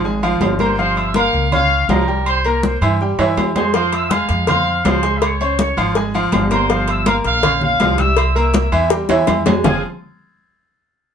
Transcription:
Already playing: G#1
0.04 G#3 G#4 G#5, high conga
0.23 F3 F4 F5, high conga, low agogo
0.41 G1, high conga, low timbale, low agogo
0.59 A#3 A#4 C5 A#5 C6, high conga, low agogo
0.77 F3 F4 C5 F5 C6, high conga
0.96 E5 E6, high conga, low agogo
1.14 A#3 A#4 F5 A#5, high conga, low timbale, low agogo
1.33 C#2, high conga
1.52 C#4 C#5 F5 C#6, high conga, low conga, low agogo
1.71 high conga
1.89 C2 F3 F4 A#4 F5 A#5, high conga, low timbale, low agogo
2.07 G3 G4 G5
2.26 C5 C6, high conga, low agogo
2.44 A#3 A#4 A#5, high conga, low agogo
2.63 C5 C6, high conga, low timbale
2.81 G2 E3 E4 E5, high conga, low agogo
3.01 G3 G4 G5, high conga
3.18 G2 E3 E4 E5, high conga, high timbale, low agogo
3.37 F2, high conga, low timbale, low agogo
3.55 G#3 G#4 C5 G#5 C6, high conga, low timbale, low agogo
3.74 F3 F4 C5 F5 C6, cowbell, high conga
3.92 E5 E6, cowbell, high conga, low agogo
4.11 G#3 G#4 F5 G#5, cowbell, high conga, low timbale, low agogo
4.29 F2, cowbell, high conga
4.47 C4 C5 F5 C6, cowbell, high conga, low conga, low agogo
4.67 high conga
4.85 C#2 F3 F4 C5 F5 C6, cowbell, high conga, low timbale, low agogo
5.03 G#3 G#4 G#5, cowbell
5.17 E5
5.22 C#5 C#6, cowbell, high conga, low agogo
5.41 C#4 C5 C#5 C6 C#6, high conga, low agogo
5.59 C#5 C#6, cowbell, high conga, low timbale
5.77 G#1 F3 F4 F5, high conga, low agogo
5.95 G#3 G#4 G#5, cowbell, high conga
6.14 F3 F4 F5, high conga, low agogo
6.32 G1, cowbell, high conga, low timbale, low agogo
6.51 A#3 A#4 C5 A#5 C6, cowbell, high conga, low agogo
6.70 F3 F4 C5 F5 C6, cowbell, high conga
6.88 E5 E6, cowbell, high conga, low agogo
7.06 A#3 A#4 F5 A#5, cowbell, high conga, low timbale, low agogo
7.24 A#1 F5, cowbell, high conga
7.43 C#4 C#5 C#6, cowbell, high conga, low conga, low agogo
7.61 F5, high conga, low conga
7.80 C2 F3 F4 F5, cowbell, high conga, low timbale, low agogo
7.98 G3 G4 E5 G5 E6, cowbell, high conga
8.17 cowbell, high conga, low agogo
8.35 A#3 A#4 E5 A#5 E6, high conga, low agogo
8.54 E5 E6, cowbell, high conga, low timbale
8.72 E2 E3 E4 E5, high conga, low agogo
8.90 G3 G4 G5, cowbell, high bongo, high conga
9.09 E2 E3 E4 E5, high bongo, high conga, high timbale, low agogo
9.27 F2, cowbell, low bongo, high conga, low timbale, low agogo
9.46 G#3 G#4 G#5, cowbell, low bongo, high conga, low timbale, low agogo
9.64 F1 F3 C4 F4 G#4 C5 F5 G#5, low bongo, low conga, low timbale

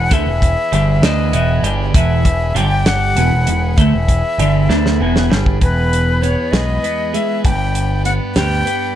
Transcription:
Already playing: E3 B3 G#4 B4 F#5
0.11 D2 D3 A3 E5, kick, closed hi-hat
0.26 E1 E2 B2
0.42 kick, closed hi-hat
0.72 G1 G2 D3 G3, closed hi-hat
1.02 D2 D3 A3 D4 D#5, snare, closed hi-hat
1.33 E1 E2 B2 E3, closed hi-hat
1.62 G1 G2 D3 G3, closed hi-hat
1.94 E1 E2 B2 E3 E5, kick, closed hi-hat
2.25 E1 E2 B2, kick, closed hi-hat
2.55 G1 G2 D3 G3 G4 D5 G5, closed hi-hat
2.86 F#5, snare, closed hi-hat
3.16 E1 E2 B2 E3 B3 G#4 B4, closed hi-hat
3.31 E1 E2 B2
3.46 E1 E2 B2, closed hi-hat
3.77 D2 D3 A3 E5, kick, closed hi-hat
3.93 E1 E2 B2
4.08 kick, closed hi-hat
4.38 G1 G2 D3 G3, closed hi-hat
4.69 D2 D3 A3 D4, snare
4.86 snare
5.00 E1 E2 B2 E3
5.16 snare
5.30 G1 G2 D3 G3, snare
5.46 kick
5.61 E1 E2 E3 B3 G#4 B4, kick, closed hi-hat
5.93 closed hi-hat
6.22 B3 C#5, closed hi-hat
6.51 B1 G#3 D#5, snare, closed hi-hat
6.83 B3, closed hi-hat
7.14 G#3 E5, closed hi-hat
7.45 G1 G2 G3 D4 G5, kick, closed hi-hat
7.75 closed hi-hat
8.05 B3 F#5, closed hi-hat
8.35 D2 G3 G5, snare, closed hi-hat
8.65 B3, closed hi-hat

